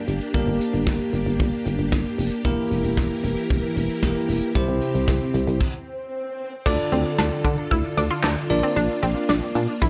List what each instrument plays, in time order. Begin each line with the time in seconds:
Already playing: tine electric piano A#3 D4 G4 A#4, string machine A#3 D4 G4
0.08 fm bass G1, closed hi-hat
0.21 closed hi-hat
0.34 fm bass G1, tine electric piano A#3 D4 G4 A#4, kick, closed hi-hat
0.47 fm bass G1
0.61 closed hi-hat
0.74 fm bass G1, closed hi-hat
0.87 fm bass G1, kick, snare
1.13 fm bass G1, closed hi-hat
1.26 fm bass G1, closed hi-hat
1.39 fm bass G1, kick, closed hi-hat
1.66 fm bass G1, closed hi-hat
1.79 fm bass G1, closed hi-hat
1.92 fm bass G1, kick, snare
2.18 fm bass F1, open hi-hat
2.32 closed hi-hat
2.45 fm bass E1, string machine E3 E4 A#4, tine electric piano A#3 E4 G4 A#4, kick, closed hi-hat
2.71 fm bass E1, closed hi-hat
2.84 fm bass E1, closed hi-hat
2.97 fm bass E1, kick, snare
3.24 fm bass E1, closed hi-hat
3.37 closed hi-hat
3.50 fm bass E1, kick, closed hi-hat
3.76 fm bass E1, closed hi-hat
3.90 closed hi-hat
4.03 fm bass E1, tine electric piano A#3 E4 G4 A#4, kick, snare
4.29 fm bass E1, open hi-hat
4.42 closed hi-hat
4.55 fm bass C2, string machine C3 C4 G4, tine electric piano C4 E4 G4 C5, kick, closed hi-hat, swell
4.68 fm bass C2
4.82 closed hi-hat
4.95 fm bass C2, closed hi-hat
5.08 fm bass C2, kick, snare
5.34 fm bass C2, closed hi-hat
5.47 fm bass C2, closed hi-hat
5.61 kick, crash
6.66 fm bass D2, string machine D3 D4 F4 A4, synth arpeggio sound D4, tine electric piano D4 F4 A4 D5, kick, crash
6.92 fm bass D2, synth arpeggio sound C4, closed hi-hat
7.18 fm bass D2, synth arpeggio sound D4, snare, closed hi-hat
7.45 fm bass D3, synth arpeggio sound D4, kick, closed hi-hat
7.71 fm bass D2, synth arpeggio sound E4, kick, closed hi-hat
7.97 fm bass D2, synth arpeggio sound D4, closed hi-hat
8.11 synth arpeggio sound F4
8.24 fm bass D2, synth arpeggio sound D4, snare, clap, closed hi-hat
8.50 fm bass A#1, string machine A#3, tine electric piano D4 F4 A#4 D5, open hi-hat
8.63 synth arpeggio sound C4
8.76 fm bass A#1, synth arpeggio sound D4, closed hi-hat
9.03 fm bass A#1, synth arpeggio sound C4, closed hi-hat
9.29 fm bass A#1, synth arpeggio sound D4, snare, closed hi-hat
9.55 fm bass A#2, synth arpeggio sound D4, closed hi-hat
9.81 fm bass A#1, synth arpeggio sound E4, kick, closed hi-hat